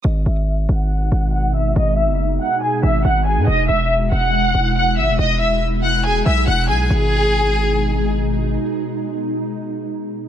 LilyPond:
<<
  \new Staff \with { instrumentName = "Violin section" } { \time 4/4 \key gis \minor \tempo 4 = 140 <dis'' dis'''>8 <e'' e'''>8 r8 <fis'' fis'''>4. <fis'' fis'''>8 <e'' e'''>8 | <dis'' dis'''>8 <e'' e'''>8 r8 <fis'' fis'''>8 <gis' gis''>8 <e'' e'''>8 <fis'' fis'''>8 <gis' gis''>8 | <dis'' dis'''>8 <e'' e'''>8 r8 <fis'' fis'''>4. <fis'' fis'''>8 <e'' e'''>8 | <dis'' dis'''>8 <e'' e'''>8 r8 <fis'' fis'''>8 <gis' gis''>8 <e'' e'''>8 <fis'' fis'''>8 <gis' gis''>8 |
gis'2. r4 | r1 | }
  \new Staff \with { instrumentName = "Ambient pad" } { \clef bass \time 4/4 \key gis \minor << { <b, dis'>1~ | <b, dis'>1 | <b, e'>1~ | <b, e'>1 |
<b, gis dis'>1~ | <b, gis dis'>1 | } \\ { gis1~ | gis1~ | gis1~ | gis1 |
r1 | r1 | } >> }
  \new Staff \with { instrumentName = "808-style bass" } { \clef bass \time 4/4 \key gis \minor gis,,8 gis,,4 gis,,4 gis,,4. | gis,,8. fis,,8. r4 gis,,8 gis,,8. gis,16 | e,,8 e,,4 e,,4 e,,4 gis,,16 e,,16 | e,,2~ e,,8 b,,8 e,,8 b,,8 |
gis,,1 | r1 | }
>>